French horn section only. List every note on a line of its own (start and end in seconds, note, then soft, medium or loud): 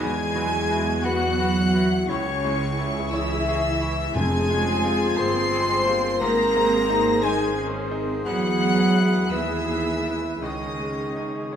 0.00 1.04 G#4 loud
1.03 2.08 F#4 loud
2.09 3.10 C#4 loud
3.13 3.97 E4 loud
4.14 5.15 G#4 loud
5.18 6.21 C5 loud
6.21 7.23 A#4 loud
7.22 7.57 G#4 loud
8.25 9.27 F#4 loud
9.30 10.42 E4 loud
10.42 11.50 D#4 medium